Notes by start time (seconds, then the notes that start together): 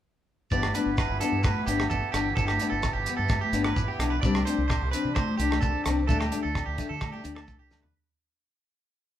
0.51 G1 E3 B3 D4 E4 G4 D5, kick, shekere
0.63 cross-stick, high conga, low agogo
0.75 B3 D4 B4, closed hi-hat, high conga, shekere
0.86 G1
0.97 B4, kick, cross-stick, low agogo, shekere
1.09 G1
1.20 B3 D4 A4, closed hi-hat, low conga, shekere
1.32 G2
1.44 B4, kick, cross-stick, high conga, low agogo, shekere
1.56 high conga
1.67 G1 B3 D4 G4, closed hi-hat, shekere
1.80 cross-stick, high conga, low conga, low agogo
1.90 G1 A4, kick, shekere
2.12 G1 D4 G4, cross-stick, closed hi-hat, low conga, low agogo, shekere
2.16 muted steel-string acoustic guitar stroke
2.35 G1 A4, kick, shekere
2.47 G4, cross-stick, high conga, low agogo
2.59 B3 D4, closed hi-hat, high conga, shekere
2.70 G1 A4
2.83 kick, cross-stick, low agogo, shekere
2.93 G1 G4
3.06 B3, muted steel-string acoustic guitar stroke, closed hi-hat, low conga, shekere
3.17 G2 A4
3.29 kick, cross-stick, high conga, low agogo, shekere
3.41 G4, high conga
3.53 G1 B3 D4, closed hi-hat, shekere
3.64 B4, cross-stick, high conga, low conga, low agogo
3.76 G1, kick, shekere
3.88 G4
3.99 B1 D4, muted steel-string acoustic guitar stroke, cross-stick, closed hi-hat, low conga, low agogo, shekere
4.10 B4
4.21 C2 G3 C4 D4 D5, kick, shekere
4.35 cross-stick, high conga, low agogo
4.45 C4 D4 C5, closed hi-hat, high conga, shekere
4.58 C2
4.68 C5, kick, cross-stick, low agogo, shekere
4.82 C2
4.91 C4 D4 B4, closed hi-hat, low conga, shekere
5.05 C3
5.15 C5, kick, cross-stick, high conga, low agogo, shekere
5.28 high conga
5.37 C2 D4 G4, closed hi-hat, shekere
5.51 cross-stick, high conga, low conga, low agogo
5.61 C2 A4, kick, shekere
5.84 C2 D4, muted clean electric guitar stroke, cross-stick, closed hi-hat, low conga, low agogo, shekere
5.88 C4
6.07 D2 A3 D4 A4, muted steel-string acoustic guitar stroke, kick, shekere
6.20 G4, cross-stick, high conga, low agogo
6.31 A3 D4, closed hi-hat, high conga, shekere
6.43 D2 A4
6.55 kick, cross-stick, low agogo, shekere
6.66 D2 G4
6.77 A3 D4, kick, closed hi-hat, low conga, shekere
6.89 D3 A4
7.01 kick, cross-stick, high conga, low agogo, shekere
7.12 G4, high conga
7.24 D2 D4, muted steel-string acoustic guitar stroke, closed hi-hat, shekere
7.35 A4, cross-stick, high conga, low agogo
7.48 C2, kick, shekere
7.59 G4
7.71 D2 A3 D4, snare, low conga, low agogo, shekere
7.82 B4, floor tom